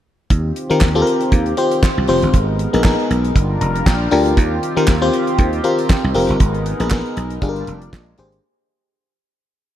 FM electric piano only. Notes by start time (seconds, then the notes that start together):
0.70 C4 F4 G4 A#4
0.95 C4 F4 G4 A4
1.02 A#4
1.57 C4 F4 G4 C5
2.08 C4 F4 G4 C5
2.73 B3 D#4 G#4 A#4
2.84 B3 D#4 G#4 A#4
3.61 A#5
3.86 G5
4.11 D4 F4 G4 A#4
4.76 C4 F4 G4 A#4
5.02 C4 F4 G4 C5
5.64 C4 F4 G4 A#4
6.15 C4 F4 G4 A#4
6.80 B3 D#4 G#4 A#4
6.91 B3 D#4 G#4 A#4
7.42 D4 F4 G4 G#4
7.49 A#4
8.18 D4 G4 G#4 C5